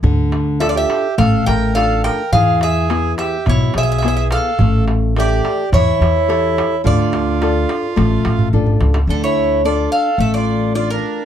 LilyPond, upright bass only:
\new Staff \with { instrumentName = "Upright bass" } { \clef bass \time 4/4 \key d \minor \tempo 4 = 106 d,2 a,,8 a,,4. | e,2 b,,8 b,,4. | a,,2 e,8 e,4. | d,2 a,,8 a,,8 a,,8 cis,8 |
d,2 a,,2 | }